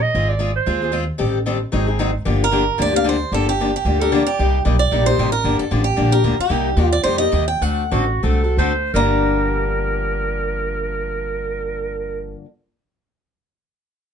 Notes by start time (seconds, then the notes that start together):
0.02 D#5
0.15 G#1 G#3 C4 F4 G#4
0.29 D5
0.39 G#3 C4 F4 G#4
0.56 C5
0.66 D#2 G#3 C4 F4 G#4
0.82 C4 F4 G#4
0.92 G#3 C4 F4 G#4
1.18 A1 D#3 G3 C4 G4 A4
1.46 D#3 G3 C4 G4 A4
1.72 G#1 D#3 F#3 C4 D#4 G#4
1.87 C4 D#4 G#4
1.99 D#3 F#3 C4 D#4 G#4
2.25 G1 D3 F3 A#3 D4 G4
2.44 A#4
2.51 D3 F3 A#3 D4 G4
2.78 D2 D3 F3 A#3 D4 G4 D5
2.93 A#3 D4 G4 F5
3.04 D3 F3 A#3 D4 G4
3.09 C5
3.32 G1 D3 F3 A#3 D4 G4 A4
3.49 G4
3.60 D3 F3 A#3 D4 G4
3.76 G4
3.85 D2 D3 F3 A#3 D4 G4
4.00 A#3 D4 G4 A4 A#4
4.12 D3 F3 A#3 D4 G4 D5
4.27 G4
4.39 C2 C3 G3 A#3 D#4 G4
4.65 B1 C3 G3 A#3 D#4 G4
4.79 D5
4.91 A#1 C3 G3 A#3 D#4 G4
5.06 A#3 D#4 G4 C5
5.18 A1 C3 G3 A#3 D#4 G4
5.32 A#4
5.44 G1 D3 F3 A#3 D4 G4
5.59 A4, muted upright bass stroke
5.71 A1 D3 F3 A#3 D4 G4
5.84 G4
5.96 A#1 D3 F3 A#3 D4 G4
6.11 A#3 D4 G4 A#4
6.24 D2 D3 F3 A#3 D4 G4
6.39 G4, muted upright bass stroke
6.49 C2 C3 G3 A#3 D#4 G4
6.76 D#2 C3 G3 A#3 D#4 G4
6.83 F4
6.93 D5
7.04 F2 C3 G3 A#3 D#4 G4 C5
7.18 A#3 D#4 G4 D#5
7.32 D#2 C3 G3 A#3 D#4 G4
7.48 G5
7.61 D2 D3 A3 C4 F#4 A4 F#5
7.91 A1 D3 A3 C4 F#4 A4
8.23 C2 D3 A3 C4 F#4 A4
8.44 C4 F#4 A4
8.57 D2 D3 A3 C4 F#4 A4 C5
8.94 G1 G2 D3 F3 A#3 D4 G4 A#4 A#5